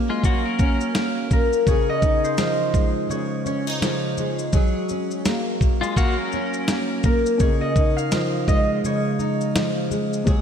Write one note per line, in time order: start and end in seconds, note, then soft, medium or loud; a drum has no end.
0.00 0.24 F#3 medium
0.00 0.94 A#3 medium
0.00 0.60 C#4 medium
0.00 1.68 G#4 medium
0.10 0.23 G#3 medium
0.10 0.23 F4 medium
0.24 1.76 F#3 medium
0.24 0.45 A#3 medium
0.24 0.45 F#4 medium
0.24 kick medium
0.24 shaker medium
0.45 1.49 C#4 medium
0.45 1.49 A#4 medium
0.59 2.03 C#4 medium
0.59 kick medium
0.59 shaker soft
0.81 shaker soft
0.95 1.29 A#3 medium
0.95 snare loud
0.95 shaker medium
1.30 1.75 A#3 medium
1.30 3.45 A#4 medium
1.30 kick medium
1.30 shaker soft
1.53 shaker soft
1.67 3.08 C#3 medium
1.67 4.54 G#4 medium
1.67 2.30 C#5 medium
1.67 kick loud
1.67 shaker medium
1.89 3.68 D#5 loud
2.02 3.45 D#4 medium
2.02 kick medium
2.02 shaker soft
2.24 3.16 C5 medium
2.24 shaker medium
2.38 3.80 F3 medium
2.38 snare loud
2.38 shaker medium
2.74 4.17 G#3 medium
2.74 kick medium
2.74 shaker soft
3.09 4.62 C#3 medium
3.09 3.46 C#5 medium
3.09 shaker medium
3.46 3.67 C#4 medium
3.46 3.82 C#5 medium
3.46 shaker soft
3.67 4.62 D#4 soft
3.67 shaker soft
3.81 4.53 F3 medium
3.81 5.73 C#5 medium
3.81 snare medium
3.81 shaker medium
4.18 5.25 G#3 medium
4.18 shaker medium
4.39 shaker medium
4.53 5.95 F#3 medium
4.53 7.41 G#4 medium
4.53 kick loud
4.53 shaker medium
4.89 6.33 C#4 medium
4.89 shaker medium
5.11 shaker soft
5.25 5.59 A#3 medium
5.25 snare loud
5.25 shaker medium
5.61 6.67 A#3 soft
5.61 kick medium
5.61 shaker soft
5.81 5.96 G#3 medium
5.81 5.95 F4 medium
5.81 shaker soft
5.96 7.48 F#3 medium
5.96 6.17 A#3 medium
5.96 6.17 F#4 medium
5.96 kick medium
5.96 shaker medium
6.18 7.22 C#4 soft
6.18 7.22 A#4 medium
6.32 7.76 C#4 medium
6.32 shaker soft
6.54 shaker soft
6.68 7.02 A#3 medium
6.68 snare loud
6.68 shaker medium
7.03 7.48 A#3 medium
7.03 9.17 A#4 medium
7.03 kick medium
7.03 shaker soft
7.26 shaker medium
7.38 8.83 C#3 medium
7.38 10.21 C#4 medium
7.38 10.22 F4 soft
7.38 10.23 G#4 medium
7.38 10.27 G#4 medium
7.38 8.85 C#5 loud
7.38 10.23 D#5 medium
7.38 kick loud
7.38 shaker medium
7.61 8.48 D#5 medium
7.76 9.18 D#4 soft
7.76 kick medium
7.76 shaker soft
7.97 9.63 F5 medium
7.97 shaker soft
8.12 9.54 F3 medium
8.12 snare loud
8.12 shaker medium
8.48 9.91 G#3 medium
8.48 10.26 D#5 medium
8.48 kick medium
8.48 shaker soft
8.84 10.35 C#3 medium
8.84 10.41 C#5 medium
8.84 shaker medium
9.19 10.35 D#4 soft
9.19 shaker soft
9.41 shaker soft
9.55 10.27 F3 medium
9.55 snare loud
9.55 shaker medium
9.91 10.41 G#3 medium
9.91 shaker medium
10.13 shaker soft
10.24 10.41 F#3 medium
10.24 10.41 A#3 medium
10.24 10.41 F#4 medium
10.24 10.41 G#4 medium
10.24 10.41 C#5 medium
10.24 kick loud
10.24 shaker medium